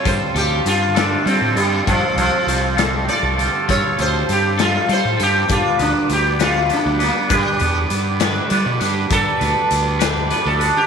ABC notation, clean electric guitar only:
X:1
M:6/8
L:1/8
Q:3/8=66
K:Gmix
V:1 name="Clean electric guitar"
[G,CFA] [CFA]2 [G,CFA] [G,CFA] [CFA] | [G,CFA] [CFA]2 [G,CFA] [G,CFA] [CFA] | [G,CFA] [CFA]2 [G,CFA] [G,CFA] [CFA] | [G,B,DB] [B,DB]2 [G,B,DB] [G,B,DB] [B,DB] |
[G,B,DB] [B,DB]2 [G,B,DB] [G,B,DB] [B,DB] | [G,B,DB] [B,DB]2 [G,B,DB] [G,B,DB] [B,DB] |]